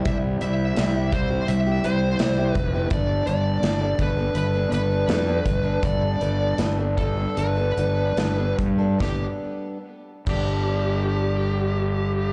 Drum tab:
CC |--------|--------|--------|---x----|
HH |xxxxxxxx|xxxxxxxx|xxxxxxxx|--------|
SD |--o---o-|--o---o-|--o---o-|o-------|
BD |o--o---o|o--o---o|o--o---o|o--o----|